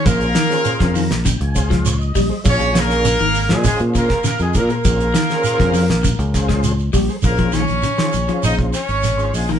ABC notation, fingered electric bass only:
X:1
M:4/4
L:1/16
Q:1/4=100
K:Bbm
V:1 name="Fingered electric bass" clef=bass
B,,,2 z3 F,,2 B,,,2 D,,4- D,, B,,, z | B,,,4- B,,, A,,,2 B,, z B,,2 z2 F,, B,, z | B,,,2 z3 F,,2 B,,,2 D,,4- D,, B,,, z | B,,,3 B,,, z2 B,,, z B,,,2 z A,,,3 B,,,2 |]